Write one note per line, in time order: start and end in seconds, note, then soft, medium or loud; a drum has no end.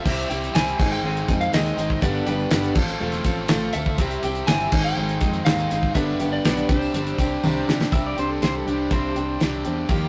0.00 0.26 E5 loud
0.05 0.24 C2 loud
0.05 0.30 C3 medium
0.05 0.30 G3 medium
0.05 0.29 C4 medium
0.05 0.29 E4 medium
0.05 0.28 G4 medium
0.05 kick medium
0.05 crash loud
0.05 tambourine soft
0.19 closed hi-hat soft
0.19 tambourine soft
0.29 0.48 C2 medium
0.29 0.54 C4 soft
0.29 0.54 E4 medium
0.29 0.54 G4 medium
0.29 closed hi-hat medium
0.29 tambourine medium
0.43 closed hi-hat soft
0.43 tambourine soft
0.54 0.73 C2 medium
0.54 0.79 C3 medium
0.54 0.79 G3 medium
0.54 0.79 C4 medium
0.54 0.79 E4 medium
0.54 0.80 G4 medium
0.54 0.92 G#5 loud
0.54 snare loud
0.54 closed hi-hat loud
0.54 tambourine loud
0.68 closed hi-hat soft
0.68 tambourine soft
0.79 0.98 G#1 medium
0.79 1.01 G#2 medium
0.79 1.01 D#3 medium
0.79 1.04 G#3 soft
0.79 1.04 C4 soft
0.79 1.04 D#4 medium
0.79 1.04 G#4 medium
0.79 kick loud
0.79 crash loud
0.91 1.42 G5 loud
0.91 tambourine medium
1.02 1.21 G#1 medium
1.02 1.52 G#2 medium
1.02 1.52 D#3 loud
1.02 1.29 G#3 medium
1.02 1.29 C4 medium
1.02 1.28 D#4 medium
1.02 1.28 G#4 medium
1.17 closed hi-hat soft
1.28 1.47 F2 medium
1.28 1.54 G#3 soft
1.28 1.54 C4 medium
1.28 1.53 D#4 soft
1.28 1.53 G#4 medium
1.28 kick medium
1.28 closed hi-hat medium
1.28 tambourine medium
1.41 1.53 F5 medium
1.41 closed hi-hat soft
1.41 tambourine soft
1.53 1.71 D#2 medium
1.53 1.78 G#2 medium
1.53 1.78 D#3 medium
1.53 1.78 G#3 medium
1.53 1.78 C4 medium
1.53 1.77 D#4 medium
1.53 1.77 G#4 medium
1.53 2.02 D#5 medium
1.53 snare loud
1.53 closed hi-hat medium
1.53 tambourine loud
1.66 closed hi-hat soft
1.66 tambourine soft
1.77 1.95 G#1 medium
1.77 2.02 G#3 soft
1.77 2.02 C4 soft
1.77 2.02 D#4 medium
1.77 2.02 G#4 medium
1.77 closed hi-hat medium
1.77 tambourine medium
1.90 kick medium
1.90 tambourine soft
2.01 2.20 G1 medium
2.01 2.26 G2 medium
2.01 2.26 D3 medium
2.01 2.27 G3 medium
2.01 2.27 B3 medium
2.01 2.26 D4 medium
2.01 2.25 G4 medium
2.01 2.28 D5 medium
2.01 kick medium
2.01 closed hi-hat loud
2.01 tambourine soft
2.15 tambourine soft
2.26 2.45 G1 medium
2.26 2.50 G3 soft
2.26 2.51 B3 medium
2.26 2.51 D4 medium
2.26 2.51 G4 medium
2.26 2.73 B4 medium
2.26 closed hi-hat medium
2.26 tambourine medium
2.39 tambourine soft
2.51 2.69 G1 medium
2.51 2.75 G2 medium
2.51 2.76 D3 medium
2.51 2.76 G3 medium
2.51 2.76 B3 medium
2.51 2.75 D4 medium
2.51 2.75 G4 medium
2.51 snare loud
2.51 closed hi-hat loud
2.51 tambourine loud
2.63 closed hi-hat soft
2.63 tambourine soft
2.75 2.93 A1 medium
2.75 2.99 A2 medium
2.75 3.00 F3 medium
2.75 2.99 C4 soft
2.75 3.00 F4 soft
2.75 3.00 A4 medium
2.75 kick loud
2.75 crash loud
2.89 tambourine medium
3.00 3.19 E1 medium
3.00 3.49 A2 medium
3.00 3.49 F3 loud
3.00 3.25 A3 medium
3.00 3.25 C4 medium
3.00 3.24 F4 medium
3.00 3.23 A4 medium
3.12 snare soft
3.12 closed hi-hat soft
3.24 3.43 A1 medium
3.24 3.48 C4 medium
3.24 3.49 F4 medium
3.24 3.49 A4 medium
3.24 kick medium
3.24 closed hi-hat medium
3.24 tambourine medium
3.38 tambourine soft
3.48 3.68 A1 medium
3.48 3.97 F3 medium
3.48 3.74 A3 medium
3.48 3.74 C4 medium
3.48 3.74 F4 loud
3.48 3.73 A4 medium
3.48 snare loud
3.48 closed hi-hat loud
3.48 tambourine loud
3.63 tambourine soft
3.73 3.98 D2 medium
3.73 3.98 C4 soft
3.73 3.99 F4 soft
3.73 3.99 A4 medium
3.73 4.19 E5 loud
3.73 closed hi-hat medium
3.73 tambourine medium
3.86 kick medium
3.86 tambourine soft
3.98 4.16 C2 loud
3.98 4.23 C3 medium
3.98 4.23 G3 medium
3.98 4.23 C4 medium
3.98 4.23 E4 medium
3.98 4.22 G4 medium
3.98 kick medium
3.98 closed hi-hat loud
3.98 tambourine soft
4.11 closed hi-hat medium
4.11 tambourine soft
4.23 4.41 C2 medium
4.23 4.47 C4 soft
4.23 4.47 E4 medium
4.23 4.47 G4 medium
4.23 closed hi-hat medium
4.23 tambourine medium
4.35 closed hi-hat soft
4.47 4.66 G1 medium
4.47 4.72 C3 medium
4.47 4.72 G3 medium
4.47 4.72 C4 medium
4.47 4.72 E4 medium
4.47 4.71 G4 medium
4.47 4.84 G#5 loud
4.47 snare loud
4.47 closed hi-hat medium
4.47 tambourine loud
4.61 closed hi-hat soft
4.61 tambourine soft
4.71 4.90 G#1 medium
4.71 4.95 G#2 medium
4.71 4.95 D#3 medium
4.71 4.95 G#3 soft
4.71 4.96 C4 soft
4.71 4.96 D#4 medium
4.71 4.96 G#4 medium
4.71 kick loud
4.71 crash loud
4.84 5.48 G5 loud
4.84 tambourine medium
4.96 5.15 G#1 medium
4.96 5.45 G#2 medium
4.96 5.46 D#3 loud
4.96 5.21 G#3 medium
4.96 5.21 C4 medium
4.96 5.20 D#4 medium
4.96 5.20 G#4 medium
5.09 closed hi-hat soft
5.21 5.39 F2 medium
5.21 5.45 G#3 soft
5.21 5.45 C4 soft
5.21 5.46 D#4 soft
5.21 5.46 G#4 medium
5.21 kick medium
5.21 closed hi-hat medium
5.34 closed hi-hat soft
5.34 tambourine soft
5.45 5.64 D#2 medium
5.45 5.70 G#2 medium
5.45 5.70 D#3 medium
5.45 5.71 G#3 medium
5.45 5.70 C4 medium
5.45 5.70 D#4 medium
5.45 5.69 G#4 medium
5.45 5.95 F5 medium
5.45 snare loud
5.45 closed hi-hat medium
5.45 tambourine medium
5.59 closed hi-hat soft
5.59 tambourine soft
5.70 5.89 G#1 medium
5.70 5.94 G#3 soft
5.70 5.94 C4 soft
5.70 5.95 D#4 medium
5.70 5.95 G#4 medium
5.70 closed hi-hat medium
5.70 tambourine medium
5.83 kick medium
5.93 6.13 G1 loud
5.93 6.19 G2 medium
5.93 6.19 D3 medium
5.93 6.19 G3 medium
5.93 6.19 B3 medium
5.93 6.19 D4 medium
5.93 6.19 G4 medium
5.93 6.33 E5 loud
5.93 kick loud
5.93 closed hi-hat medium
5.93 tambourine soft
6.08 tambourine soft
6.20 6.38 G1 medium
6.20 6.44 G3 soft
6.20 6.44 B3 soft
6.20 6.44 D4 medium
6.20 6.44 G4 medium
6.20 closed hi-hat medium
6.20 tambourine medium
6.33 6.70 D5 medium
6.33 tambourine soft
6.44 6.63 B1 medium
6.44 6.69 G2 medium
6.44 6.69 D3 medium
6.44 6.69 G3 medium
6.44 6.69 B3 medium
6.44 6.69 D4 medium
6.44 6.68 G4 medium
6.44 snare loud
6.44 closed hi-hat loud
6.44 tambourine medium
6.57 closed hi-hat soft
6.57 tambourine soft
6.69 6.87 C2 medium
6.69 6.92 C3 medium
6.69 6.93 G3 medium
6.69 6.94 C4 medium
6.69 6.94 D4 soft
6.69 6.93 G4 medium
6.69 7.64 C5 medium
6.69 kick loud
6.69 closed hi-hat medium
6.69 tambourine soft
6.82 tambourine medium
6.93 7.12 G1 medium
6.93 7.42 C3 medium
6.93 7.18 G3 medium
6.93 7.19 C4 medium
6.93 7.19 D4 medium
6.93 7.18 G4 medium
6.93 closed hi-hat loud
6.93 tambourine soft
7.07 closed hi-hat soft
7.07 tambourine soft
7.18 7.36 C2 medium
7.18 7.43 C4 soft
7.18 7.43 D4 medium
7.18 7.43 G4 medium
7.18 kick medium
7.18 closed hi-hat medium
7.18 tambourine medium
7.32 tambourine soft
7.43 7.61 C2 medium
7.43 7.68 C3 medium
7.43 7.68 G3 loud
7.43 7.68 C4 medium
7.43 7.68 D4 loud
7.43 7.67 G4 medium
7.43 high tom medium
7.43 tambourine loud
7.57 tambourine soft
7.68 7.86 C3 medium
7.68 7.92 C4 medium
7.68 7.92 D4 medium
7.68 7.92 G4 medium
7.68 snare medium
7.81 snare medium
7.81 tambourine soft
7.92 8.14 C2 medium
7.92 8.17 C3 medium
7.92 8.17 G3 medium
7.92 8.17 C4 medium
7.92 8.16 D4 medium
7.92 8.15 G4 medium
7.92 8.04 E5 medium
7.92 kick loud
7.92 closed hi-hat medium
8.07 8.17 D5 medium
8.17 8.39 C2 medium
8.17 8.41 C4 soft
8.17 8.42 D4 medium
8.17 8.41 G4 medium
8.17 8.30 C5 medium
8.17 closed hi-hat medium
8.30 8.41 A4 medium
8.42 8.64 C2 medium
8.42 8.66 G3 medium
8.42 8.66 C4 medium
8.42 8.66 D4 medium
8.42 8.65 G4 medium
8.42 8.54 C5 medium
8.42 snare loud
8.42 closed hi-hat medium
8.55 8.66 A4 medium
8.66 8.88 C2 medium
8.66 9.38 C3 medium
8.66 9.40 G3 medium
8.66 8.90 C4 soft
8.66 8.91 D4 medium
8.66 8.90 G4 medium
8.66 8.91 G4 medium
8.66 closed hi-hat medium
8.91 9.13 C2 medium
8.91 9.15 C3 medium
8.91 9.15 G3 medium
8.91 9.16 C4 medium
8.91 9.15 D4 medium
8.91 9.15 G4 medium
8.91 9.39 C5 medium
8.91 kick loud
8.91 closed hi-hat medium
9.16 9.37 C2 medium
9.16 9.39 C4 soft
9.16 9.40 D4 medium
9.16 9.40 G4 medium
9.16 closed hi-hat medium
9.40 9.63 C2 medium
9.40 9.88 C3 medium
9.40 9.64 G3 medium
9.40 9.65 C4 medium
9.40 9.64 D4 medium
9.40 9.63 G4 medium
9.40 snare medium
9.40 closed hi-hat medium
9.64 9.88 E2 medium
9.64 9.90 C4 soft
9.64 9.90 D4 soft
9.64 9.89 G4 medium
9.64 closed hi-hat medium
9.89 10.09 D#2 medium
9.89 10.09 D#3 medium
9.89 10.09 F3 medium
9.89 10.09 G3 medium
9.89 10.09 A#3 medium
9.89 10.09 D#4 medium
9.89 10.09 G4 medium
9.89 kick loud
9.89 closed hi-hat medium